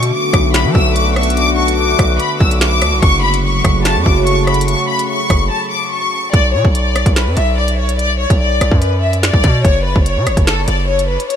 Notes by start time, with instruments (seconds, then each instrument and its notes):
Already playing: 808-style bass B2, analog synth pad D3 A3 B3 F#4
0.03 closed hi-hat
0.13 violin section D6
0.33 808-style bass B1, kick, cross-stick, closed hi-hat
0.54 violin section B5, finger snap, snare, closed hi-hat
0.65 808-style bass F#3
0.75 808-style bass B1, violin section E6, kick
0.96 violin section D6, closed hi-hat
1.16 violin section C#6, cross-stick, closed hi-hat
1.23 closed hi-hat
1.30 closed hi-hat
1.37 violin section D6, closed hi-hat
1.58 violin section C#6
1.68 closed hi-hat
1.78 violin section D6
1.99 808-style bass B1, kick, cross-stick, closed hi-hat
2.20 violin section B5, closed hi-hat
2.41 808-style bass B1, violin section E6, kick
2.51 closed hi-hat
2.61 violin section D6, finger snap, snare
2.82 808-style bass D2, cross-stick, closed hi-hat
2.92 808-style bass B1
3.03 808-style bass F#1, analog synth pad C#3 F#3 A3 F#4, violin section C#6, kick, closed hi-hat
3.23 violin section B5
3.34 closed hi-hat
3.44 violin section C#6
3.65 808-style bass F#1, kick, cross-stick, closed hi-hat
3.85 violin section A5, finger snap, snare, closed hi-hat
3.96 808-style bass F#2
4.06 808-style bass F#1, violin section D6, kick
4.27 violin section C#6, closed hi-hat
4.47 violin section B5, cross-stick, closed hi-hat
4.54 closed hi-hat
4.61 closed hi-hat
4.68 violin section C#6, closed hi-hat
4.89 violin section B5
4.99 closed hi-hat
5.09 violin section C#6
5.30 808-style bass F#1, kick, cross-stick, closed hi-hat
5.51 violin section A5
5.71 violin section D6
5.92 violin section C#6
6.33 808-style bass B1, violin section D5, kick, closed hi-hat
6.54 808-style bass B2, violin section C#5
6.65 808-style bass B1, kick
6.75 violin section D5, closed hi-hat
6.96 cross-stick, closed hi-hat
7.06 808-style bass B1, kick, closed hi-hat
7.16 violin section B4, finger snap, snare
7.27 808-style bass F#2
7.37 808-style bass B1, violin section E5, closed hi-hat
7.58 violin section D5
7.68 closed hi-hat
7.78 violin section C#5
7.89 closed hi-hat
7.99 violin section D5, closed hi-hat
8.20 violin section C#5
8.30 808-style bass B1, kick, closed hi-hat
8.40 violin section D5
8.61 808-style bass B1, cross-stick, closed hi-hat
8.71 808-style bass F#2, kick
8.82 violin section B4, closed hi-hat
9.03 violin section E5
9.13 closed hi-hat
9.23 violin section D5, finger snap, snare, closed hi-hat
9.33 808-style bass B1, kick
9.44 808-style bass B2, kick, closed hi-hat
9.65 808-style bass F#1, violin section C#5, kick, closed hi-hat
9.85 violin section B4
9.96 808-style bass F#1, kick
10.06 violin section C#5, closed hi-hat
10.16 808-style bass C#3
10.27 808-style bass F#1, cross-stick, closed hi-hat
10.37 808-style bass F#1, kick, closed hi-hat
10.47 violin section A4, finger snap, snare
10.68 808-style bass F#1, violin section D5, closed hi-hat
10.89 violin section C#5
10.99 closed hi-hat
11.09 violin section B4
11.20 closed hi-hat
11.30 violin section C#5, closed hi-hat